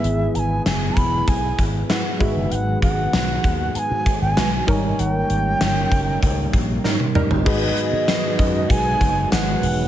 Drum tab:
CC |----------------|----------------|----------------|x---------------|
HH |x-x-x-x-x-x-x-x-|x-x-x-x-x-x-x-x-|x-x-x-x-x-x-----|--x-x-x-x-x-x-o-|
TB |----------------|----------------|----------------|----x-------x---|
SD |----o-------o---|----o-------o---|----o-------o---|----o-------o---|
T1 |----------------|----------------|-------------o--|----------------|
T2 |----------------|----------------|--------------o-|----------------|
FT |----------------|----------------|---------------o|----------------|
BD |------o-o-o---o-|--o---o---o---o-|------o-o-o-----|o-----o-o-o-----|